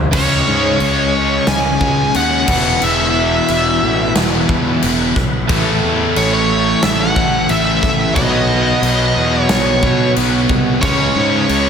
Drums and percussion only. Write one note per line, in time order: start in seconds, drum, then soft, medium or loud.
0.13 kick loud
0.13 crash loud
0.13 crash medium
0.80 crash medium
1.47 snare loud
1.47 crash medium
1.81 kick medium
2.15 crash medium
2.48 kick loud
2.48 crash loud
2.82 crash medium
3.48 crash medium
4.16 snare loud
4.16 crash medium
4.49 kick medium
4.83 crash medium
5.16 kick medium
5.16 snare soft
5.49 kick loud
5.49 crash medium
6.16 crash medium
6.83 snare loud
6.83 crash medium
7.16 kick medium
7.49 crash medium
7.83 kick medium
7.83 snare soft
8.16 kick loud
8.16 crash medium
8.83 crash medium
9.49 snare loud
9.49 crash medium
9.83 kick medium
10.16 crash medium
10.49 kick medium
10.83 kick loud
10.83 crash medium
11.49 crash medium